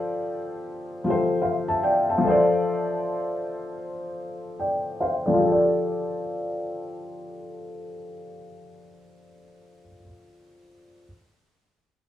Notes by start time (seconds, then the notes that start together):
Already playing: F3 F4 G4 A4 D5
1.04 F3 F4 G4
1.09 A4 C5
1.42 C5 F5
1.68 E5 A5
1.83 D5 G5
2.10 E5 A5
2.18 F3 F4
2.24 A4 C5
2.30 D5
4.60 D5 G5
5.01 C5 F5
5.26 F3 A4 D5
5.34 F4
5.40 G4
5.45 A4
5.52 D5